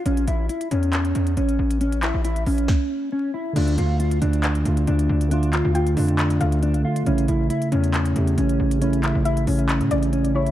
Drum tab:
CC |----------------|----------------|x---------------|----------------|
HH |xxx-xxxxxxxxxx-x|xxx-xxox--------|xxx-xxxxxxxxxx-x|xxx-xxoxxxxxxx-x|
CP |--------x-------|--x-------------|--------x-------|--x-----x-------|
SD |----------------|--------o-------|----------------|----------------|
BD |----------------|--------o-------|----------------|----------------|

CC |----------------|----------------|
HH |xxx-xxxxxxxxxx-x|xxx-xxoxxxxxxx-x|
CP |--------x-------|--x-----x-------|
SD |----------------|----------------|
BD |----------------|----------------|